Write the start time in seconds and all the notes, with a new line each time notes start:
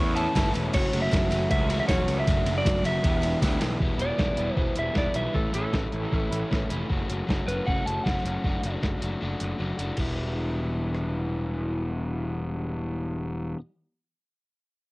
Already playing: E2 A2 E3 A3 B3 C#4 E4 C#6
0.15 A3 C#4 E4 A5, ride, tambourine
0.27 tambourine
0.34 G1 E3 A3 C#4 E4, kick, snare, ride, tambourine
0.38 E4
0.52 E1 B3, ride, tambourine
0.73 F#1 F#2 F#3 A3 C#4 F#4 C#5, kick, crash, tambourine
0.93 F#1 A3 C#4 F#4, ride
0.97 A3
1.02 E5
1.11 F#1 E3 F#3 A3 C#4 F#4, kick, snare, ride, tambourine
1.30 F#1 A3 C#4 F#4, ride, tambourine
1.34 A3
1.50 C#2 F#4 E5, kick, ride, tambourine
1.70 A3 C#4 F#4, ride, tambourine
1.80 E5
1.88 E1 F#3 A3 C#4 F#4 C#5, kick, snare, ride, tambourine
2.07 C#2 A3, ride, tambourine
2.20 E5
2.26 F#1 F#2 F#3 A3 D4 F#4, kick, ride, tambourine
2.45 F#1 A3 D4 F#4, ride, tambourine
2.58 D5, tambourine
2.65 F#1 F#3 A3 D4 F#4, kick, snare, ride, tambourine
2.75 tambourine
2.84 F#1 A3 D4 F#4 E5, ride, tambourine
2.88 A3
3.03 E1 E2 E3 B3 E4 G4, kick, ride, tambourine
3.14 tambourine
3.21 D4 E4 G4, ride, tambourine
3.27 B3
3.41 D2 E3 B3 E4, kick, snare, ride, tambourine
3.46 G4
3.60 B1 G3, snare, ride, tambourine
3.80 E1 E3 G3 B3 E4, kick
3.98 E1 E3 G3 B3 E4 D5, closed hi-hat
4.02 G3
4.18 E1 E3 G3 B3 E4, kick, snare
4.36 E1 E3 G3 B3 E4, closed hi-hat
4.53 E3 C5, kick
4.57 E1 G3 B3 E4
4.76 E1 E3 G3 B3 E4 E5, closed hi-hat
4.94 E1 E3 G3 B3 E4, kick, snare
4.98 D5
5.14 B1 E3 G3 B3 E4 E5, closed hi-hat
5.33 A1 A2 E3 A3 C#4 E4 A4, kick
5.53 A1 E3 A3 C#4 E4 A4, closed hi-hat
5.73 A1 E3 A3 C#4 E4, kick, snare
5.92 A1 E3 A3 C#4 E4, closed hi-hat
6.11 A1 A2 E3 A3 C#4 E4, kick
6.31 A1 E3 A3 C#4 E4, closed hi-hat
6.51 A1 E3 A3 C#4 E4, kick, snare
6.69 F1 E3 A3 C#4 E4, closed hi-hat
6.89 F#1 F#3 A3 C#4 F#4, kick
7.08 F#1 A3 C#4 F#4, closed hi-hat
7.27 F#1 F#3 A3 C#4 F#4, kick, snare
7.47 F#1 A3 C#4 F#4 B4, closed hi-hat
7.66 F#1 F#3 A3 C#4 F#4 F#5, kick
7.86 F#1 A5, closed hi-hat
8.04 F#1 F#3 A3 C#4 F#4 F#5, kick, snare
8.17 snare
8.25 F#1 A3 C#4 F#4, closed hi-hat
8.44 F#1 F#3 A3 D4 F#4, kick
8.64 F#1 A3 D4 F#4, closed hi-hat
8.81 F#1 F#3 A3 D4 F#4, kick, snare
9.01 F#1 A3 D4 F#4, closed hi-hat
9.21 F#1 F#3 A3 D4 F#4
9.40 F#1, closed hi-hat
9.58 F#1 F#3 A3 D4 F#4
9.78 F#1 A3 D4 F#4, closed hi-hat
9.96 E1 E3 G3 B3, kick, crash
10.00 E4
10.95 cross-stick